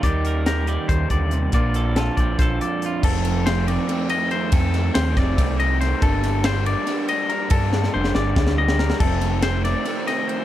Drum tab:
CC |--------------|--------------|x-------------|--------------|
RD |--------------|--------------|--x-x-x-x-x-x-|x-x-x-x-x-x-x-|
HH |x-x-x-x-x-x-x-|x-x-x-x-x-x-x-|--------------|--------------|
SD |----o---------|----o---o-----|----o---------|--o-o-o-o---o-|
BD |o-------o-o---|o-----o-o-----|o-------------|o-----o-o-----|

CC |--------------|--------------|x-------------|
RD |x-x-x-x-x-x-x-|x-------------|--x-x-x-x-x-x-|
HH |--------------|--------------|--------------|
SD |--o-o---o-----|--oo-oo-oo-ooo|--o-o-o---o---|
BD |o-------------|o-------o-----|o-------------|